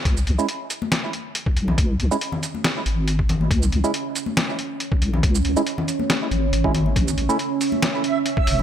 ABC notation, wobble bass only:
X:1
M:4/4
L:1/8
Q:"Swing 16ths" 1/4=139
K:C#m
V:1 name="Wobble bass" clef=bass
C,, C,, z4 z B,,, | C,, C,, z3 G,,,3 | C,, C,, z4 z B,,, | C,, C,, z3 G,,, G,,,2 |
A,,, A,,, z4 z E,,, |]